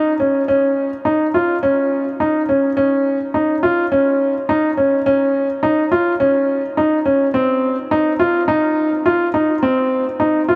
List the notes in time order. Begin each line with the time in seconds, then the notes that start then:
Already playing: D#4
0.20 C#4
0.48 C#4
1.05 D#4
1.34 F4
1.63 C#4
2.20 D#4
2.49 C#4
2.77 C#4
3.34 D#4
3.63 F4
3.92 C#4
4.49 D#4
4.77 C#4
5.06 C#4
5.63 D#4
5.92 F4
6.20 C#4
6.77 D#4
7.05 C#4
7.34 C4
7.91 D#4
8.20 F4
8.48 D#4
9.06 F4
9.34 D#4
9.63 C4
10.20 D#4
10.48 F4